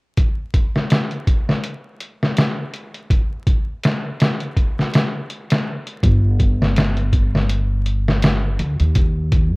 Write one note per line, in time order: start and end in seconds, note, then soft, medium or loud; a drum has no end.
0.17 kick medium
0.17 closed hi-hat medium
0.54 kick medium
0.54 closed hi-hat medium
0.76 snare soft
0.90 snare loud
0.90 closed hi-hat medium
1.11 closed hi-hat soft
1.27 kick medium
1.27 closed hi-hat medium
1.49 snare soft
1.64 closed hi-hat medium
2.00 closed hi-hat medium
2.23 snare soft
2.37 snare loud
2.37 closed hi-hat medium
2.74 closed hi-hat medium
2.94 closed hi-hat soft
3.10 kick loud
3.10 closed hi-hat medium
3.47 kick medium
3.47 closed hi-hat medium
3.84 snare loud
3.84 closed hi-hat medium
4.20 snare loud
4.20 closed hi-hat medium
4.40 closed hi-hat soft
4.56 kick medium
4.56 closed hi-hat medium
4.79 snare soft
4.94 snare medium
4.94 closed hi-hat medium
5.30 closed hi-hat medium
5.50 snare loud
5.50 closed hi-hat medium
5.87 closed hi-hat medium
6.03 8.56 G1 loud
6.03 kick loud
6.03 closed hi-hat medium
6.40 kick medium
6.40 closed hi-hat medium
6.62 snare soft
6.76 snare loud
6.76 closed hi-hat medium
6.97 closed hi-hat soft
7.13 kick medium
7.13 closed hi-hat medium
7.35 snare soft
7.50 closed hi-hat medium
7.86 closed hi-hat medium
8.08 snare medium
8.22 snare loud
8.22 closed hi-hat medium
8.59 8.77 D2 medium
8.59 closed hi-hat medium
8.79 9.53 D#2 medium
8.79 closed hi-hat soft
8.95 kick loud
8.95 closed hi-hat medium
9.32 kick medium
9.32 closed hi-hat medium
9.53 9.56 F#2 medium